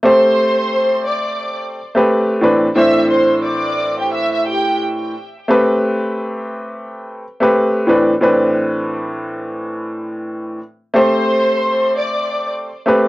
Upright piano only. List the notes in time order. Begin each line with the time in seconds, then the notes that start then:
0.03 A3 C4 G4 C5
1.95 A3 C4 G4 B4
2.41 A2 E3 C4 D4 B4
2.75 A2 E3 C4 D4 C5
5.48 A3 C4 G4 B4
7.40 A3 C4 G4 B4
7.87 A2 E3 C4 D4 B4
8.21 A2 E3 C4 D4 B4
10.94 A3 C4 G4 C5
12.86 A3 C4 G4 B4